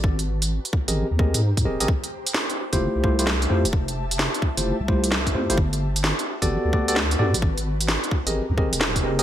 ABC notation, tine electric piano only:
X:1
M:4/4
L:1/16
Q:"Swing 16ths" 1/4=130
K:F
V:1 name="Tine electric piano"
z6 z [CG_AB_e]2 z [CGABe]2 z2 [CGABe] [CGABe] | z6 z [A,EFGc]3 [A,EFGc] [A,EFGc] z2 [A,EFGc] z | z6 z [A,EFGc]2 z [A,EFGc]2 z2 [A,EFGc] [A,EFGc] | z6 z [=B,^FGAd]3 [B,FGAd] [B,FGAd] z2 [B,FGAd] z |
z6 z [CG_AB_e]2 z [CGABe]2 z2 [CGABe] [CGABe] |]